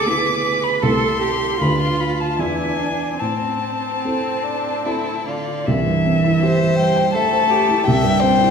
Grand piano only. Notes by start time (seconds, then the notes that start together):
Already playing: D2 B3 E4 G#4
0.06 B3 E4 G#4
0.83 C2 A3 E4 A4
1.61 D2 D4 F4 B4
2.39 E2 D4 E4 B4
3.21 A2
4.05 C4 E4 A4
4.86 C4 E4 A4
5.67 C2
5.86 G2
6.05 C4
6.24 E4
6.42 G4
6.60 C5
6.78 E5
6.96 G5
7.15 E5
7.33 C5
7.51 G4
7.68 E4
7.87 C2
8.04 G2
8.23 C4
8.41 E4